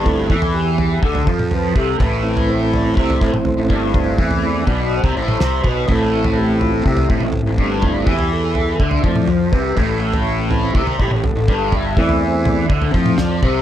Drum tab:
SD |----------------|----------------|------------o---|----------------|
T2 |-----------o----|-----------o----|------o----o--o-|-----------o----|
FT |o--o--o--o--o---|o--o--o--o--o---|o--o--o--o--o---|o--o--o--o--o---|
BD |o-o-----o-o---o-|o-------o-o---o-|o-o---o--o----o-|o-------o-o---o-|

SD |----------------|----------------|------------o---|
T2 |-----------o----|-----------o----|------o----o--o-|
FT |o--o--o--o--o---|o--o--o--o--o---|o--o--o--o--o---|
BD |o-o-----o-o---o-|o-------o-o---o-|o-o-----o-o---o-|